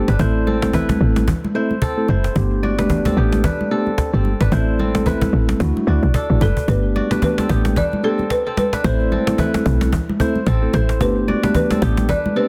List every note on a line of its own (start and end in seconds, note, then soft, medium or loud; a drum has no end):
0.00 0.11 A3 medium
0.00 0.11 B3 medium
0.00 0.14 C4 medium
0.00 0.11 D4 medium
0.00 0.11 G4 medium
0.00 0.26 G4 medium
0.00 0.47 A4 medium
0.08 0.17 G1 medium
0.08 1.77 D4 medium
0.08 0.26 B4 medium
0.08 cajon slap medium
0.19 0.97 A1 loud
0.19 0.58 A3 medium
0.19 0.58 C4 medium
0.19 0.58 E4 medium
0.19 0.74 E4 medium
0.19 0.59 A4 loud
0.19 0.80 C5 loud
0.19 cajon bass loud
0.19 low conga medium
0.35 cajon slap soft
0.47 0.80 C4 medium
0.47 1.79 A4 medium
0.47 high conga medium
0.62 0.98 A3 medium
0.62 0.98 C4 medium
0.62 0.98 E4 medium
0.62 0.98 A4 medium
0.62 cajon slap loud
0.62 high conga medium
0.73 1.55 E4 medium
0.73 1.61 B4 medium
0.73 cajon bass loud
0.73 low conga medium
0.89 cajon bass loud
0.89 cajon slap medium
0.89 high conga medium
1.00 1.34 A1 medium
1.00 1.26 A3 medium
1.00 1.26 C4 medium
1.00 1.26 E4 medium
1.00 1.26 A4 medium
1.00 cajon slap soft
1.16 cajon slap medium
1.16 high conga medium
1.28 cajon bass loud
1.28 low conga medium
1.43 cajon slap soft
1.43 high conga medium
1.54 1.73 A3 medium
1.54 1.73 C4 medium
1.54 1.74 E4 medium
1.54 2.10 E4 medium
1.54 1.74 A4 medium
1.54 2.09 C5 medium
1.70 cajon slap soft
1.70 high conga medium
1.82 2.85 C4 medium
1.82 3.05 A4 medium
1.82 cajon bass medium
1.82 cajon slap medium
1.97 2.13 A3 medium
1.97 2.13 C4 medium
1.97 2.13 E4 medium
1.97 2.13 A4 medium
1.97 cajon slap soft
2.08 2.30 F#1 medium
2.08 3.67 E4 medium
2.08 2.85 C5 medium
2.08 cajon slap soft
2.08 high conga medium
2.24 cajon slap medium
2.35 3.13 G1 loud
2.35 2.75 A3 medium
2.35 2.75 B3 medium
2.35 2.75 D4 medium
2.35 2.75 G4 loud
2.35 cajon bass loud
2.35 low conga medium
2.51 cajon slap soft
2.63 3.23 F#4 medium
2.63 3.74 D5 medium
2.63 high conga medium
2.78 3.14 A3 medium
2.78 3.14 B3 medium
2.78 3.14 D4 medium
2.78 3.45 D4 medium
2.78 3.14 G4 medium
2.78 3.13 B4 medium
2.78 cajon slap loud
2.78 high conga medium
2.90 cajon bass loud
2.90 low conga medium
3.05 3.24 C4 medium
3.05 3.71 A4 medium
3.05 cajon bass loud
3.05 cajon slap loud
3.05 high conga medium
3.16 3.50 A1 medium
3.16 3.42 A3 medium
3.16 3.42 B3 medium
3.16 3.78 B3 medium
3.16 3.42 D4 medium
3.16 3.42 G4 medium
3.16 4.58 G4 medium
3.32 cajon slap medium
3.32 high conga medium
3.44 4.41 D4 medium
3.44 3.78 B4 medium
3.44 cajon bass loud
3.44 low conga medium
3.59 cajon slap soft
3.59 high conga medium
3.70 3.90 A3 medium
3.70 3.90 B3 medium
3.70 4.14 C4 medium
3.70 3.90 D4 medium
3.70 3.90 G4 medium
3.70 4.14 A4 medium
3.86 cajon slap soft
3.86 high conga medium
3.98 cajon bass loud
3.98 cajon slap medium
4.13 4.35 G1 medium
4.13 4.29 A3 medium
4.13 4.29 B3 medium
4.13 4.47 C4 medium
4.13 4.29 D4 medium
4.13 4.29 G4 medium
4.13 4.79 A4 medium
4.25 cajon slap soft
4.25 high conga medium
4.41 4.49 G1 medium
4.41 6.10 D4 medium
4.41 4.58 B4 medium
4.41 cajon slap medium
4.52 5.29 A1 loud
4.52 4.91 A3 medium
4.52 4.91 C4 medium
4.52 4.91 E4 medium
4.52 5.07 E4 medium
4.52 4.91 A4 loud
4.52 5.12 C5 loud
4.52 cajon bass loud
4.52 low conga medium
4.67 cajon slap soft
4.79 5.12 C4 medium
4.79 6.11 A4 medium
4.79 high conga medium
4.94 5.30 A3 medium
4.94 5.30 C4 medium
4.94 5.30 E4 medium
4.94 5.30 A4 medium
4.94 cajon slap loud
4.94 high conga medium
5.06 6.64 E4 medium
5.06 6.29 B4 medium
5.06 cajon bass loud
5.06 low conga medium
5.21 cajon bass loud
5.21 cajon slap medium
5.21 high conga medium
5.33 5.54 A1 medium
5.33 5.58 A3 medium
5.33 5.58 C4 medium
5.33 5.58 E4 medium
5.33 5.58 A4 medium
5.33 cajon slap soft
5.49 cajon slap medium
5.49 high conga medium
5.60 5.72 D2 loud
5.60 5.85 A3 medium
5.60 5.85 D4 medium
5.60 5.85 E4 medium
5.60 5.85 F#4 loud
5.60 cajon bass loud
5.60 low conga medium
5.75 cajon slap soft
5.75 high conga medium
5.87 5.99 D2 medium
5.87 6.06 A3 medium
5.87 6.06 D4 medium
5.87 6.06 E4 medium
5.87 6.06 F#4 medium
5.87 6.96 F#4 medium
5.87 6.95 D5 medium
5.87 cajon slap soft
6.02 6.12 B1 medium
6.02 cajon slap soft
6.02 high conga medium
6.14 6.42 D4 medium
6.14 7.38 A4 medium
6.14 cajon bass loud
6.14 cajon slap medium
6.29 6.39 A1 medium
6.29 6.45 A3 medium
6.29 6.45 D4 medium
6.29 6.46 E4 medium
6.29 6.46 F#4 medium
6.29 cajon slap soft
6.41 6.53 F#1 medium
6.41 7.12 D4 medium
6.41 6.70 A4 medium
6.41 7.11 B4 medium
6.41 cajon bass medium
6.41 high conga medium
6.57 cajon bass medium
6.68 7.02 G1 loud
6.68 7.07 A3 medium
6.68 7.07 B3 medium
6.68 7.07 D4 medium
6.68 7.07 G4 loud
6.68 7.22 B4 loud
6.68 cajon bass loud
6.83 cajon slap soft
6.95 7.56 F#4 medium
6.95 8.06 D5 medium
6.95 cajon slap soft
6.95 high conga medium
7.11 7.46 A3 medium
7.11 7.47 B3 medium
7.11 7.47 D4 medium
7.11 7.77 D4 medium
7.11 7.47 G4 medium
7.11 7.45 B4 medium
7.11 cajon slap loud
7.11 high conga medium
7.22 7.78 B4 loud
7.22 cajon bass loud
7.22 low conga medium
7.38 7.57 C4 medium
7.38 8.03 A4 medium
7.38 cajon slap loud
7.38 high conga medium
7.49 7.83 A1 medium
7.49 7.74 A3 medium
7.49 7.74 B3 medium
7.49 8.11 B3 medium
7.49 7.75 D4 medium
7.49 7.75 G4 medium
7.49 8.91 G4 medium
7.49 cajon bass medium
7.65 cajon slap medium
7.65 high conga medium
7.76 8.74 D4 medium
7.76 8.11 B4 medium
7.76 8.05 D5 loud
7.76 cajon bass loud
7.76 low conga medium
7.91 cajon slap soft
7.91 high conga medium
8.03 8.22 A3 medium
8.03 8.22 B3 medium
8.03 8.47 C4 medium
8.03 8.22 D4 medium
8.03 8.22 G4 medium
8.03 8.46 A4 medium
8.03 8.32 A4 medium
8.03 cajon slap soft
8.18 cajon slap soft
8.18 high conga medium
8.30 8.57 B4 loud
8.30 cajon slap loud
8.46 8.79 C4 medium
8.46 9.11 A4 medium
8.46 cajon slap soft
8.57 8.86 B4 medium
8.57 cajon slap medium
8.57 high conga medium
8.73 10.42 D4 medium
8.73 8.91 B4 medium
8.73 cajon slap medium
8.84 9.18 A1 loud
8.84 9.23 A3 medium
8.84 9.23 C4 medium
8.84 9.23 E4 medium
8.84 9.39 E4 medium
8.84 9.24 A4 loud
8.84 9.45 C5 loud
8.84 9.89 C5 loud
8.84 cajon bass loud
9.00 cajon slap soft
9.11 9.45 C4 medium
9.11 10.44 A4 medium
9.11 cajon slap soft
9.11 high conga medium
9.27 9.63 A3 medium
9.27 9.63 C4 medium
9.27 9.63 E4 medium
9.27 9.63 A4 medium
9.27 cajon slap loud
9.27 high conga medium
9.38 10.20 E4 medium
9.38 10.26 B4 medium
9.38 cajon bass loud
9.38 low conga medium
9.54 cajon slap loud
9.54 high conga medium
9.65 9.99 B1 loud
9.65 9.91 A3 medium
9.65 9.91 C4 medium
9.65 9.91 E4 medium
9.65 9.91 A4 medium
9.65 cajon bass medium
9.81 cajon slap medium
9.81 high conga medium
9.93 cajon bass loud
9.93 low conga medium
10.08 cajon slap soft
10.08 high conga medium
10.19 10.38 A3 medium
10.19 10.38 C4 medium
10.19 10.39 E4 medium
10.19 10.74 E4 medium
10.19 10.39 A4 medium
10.19 10.74 C5 medium
10.19 cajon bass loud
10.35 cajon slap soft
10.35 high conga medium
10.47 10.68 A1 loud
10.47 11.50 C4 medium
10.47 11.70 A4 medium
10.47 cajon slap loud
10.62 10.78 A3 medium
10.62 10.78 C4 medium
10.62 10.78 E4 medium
10.62 10.78 A4 medium
10.62 cajon slap soft
10.73 11.02 A1 medium
10.73 12.31 E4 medium
10.73 11.02 A4 medium
10.73 11.50 C5 medium
10.73 cajon slap loud
10.73 high conga medium
10.89 cajon slap medium
11.00 11.34 G1 loud
11.00 11.39 A3 medium
11.00 11.39 B3 medium
11.00 11.40 D4 medium
11.00 11.40 G4 loud
11.00 11.54 B4 loud
11.00 cajon bass loud
11.16 cajon slap soft
11.28 11.88 F#4 medium
11.28 12.39 D5 medium
11.28 cajon slap soft
11.28 high conga medium
11.43 11.79 A3 medium
11.43 11.79 B3 medium
11.43 11.79 D4 medium
11.43 12.10 D4 medium
11.43 11.79 G4 medium
11.43 11.78 B4 medium
11.43 cajon slap loud
11.43 high conga medium
11.55 12.05 B4 loud
11.55 cajon bass loud
11.55 low conga medium
11.71 11.89 C4 medium
11.71 12.36 A4 medium
11.71 cajon slap loud
11.71 high conga medium
11.81 12.15 A1 medium
11.81 12.07 A3 medium
11.81 12.07 B3 medium
11.81 12.43 B3 medium
11.81 12.07 D4 medium
11.81 12.07 G4 medium
11.81 12.48 G4 medium
11.81 cajon bass loud
11.97 cajon slap loud
11.97 high conga medium
12.09 12.48 D4 medium
12.09 12.43 B4 medium
12.09 12.34 D5 loud
12.09 cajon bass loud
12.09 low conga medium
12.26 high conga medium
12.35 12.48 A3 medium
12.35 12.48 B3 medium
12.35 12.48 C4 medium
12.35 12.48 D4 medium
12.35 12.48 G4 medium
12.35 12.48 A4 medium
12.35 12.48 B4 medium
12.35 cajon slap soft